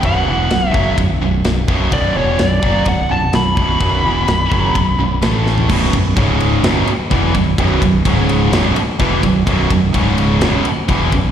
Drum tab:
CC |----------------|----------------|----------------|x---------------|
RD |b---b---b---b---|b---b---b---b---|b---b---b---b---|--x-x-x-x-x-x-x-|
SD |----o-------o---|----o-------o---|----o-------o-o-|--------o-------|
FT |----------------|----------------|---------------o|----------------|
BD |o-----o-o-----o-|o-----o-o-----o-|o-----o-o-------|o-o-o-------o-o-|

CC |----------------|----------------|
RD |x-x-x-x-x-x-x-x-|x-x-x-x-x-x-x-x-|
SD |--------o-------|--------o-------|
FT |----------------|----------------|
BD |o-o-o-------o-o-|o-o-o-------o-o-|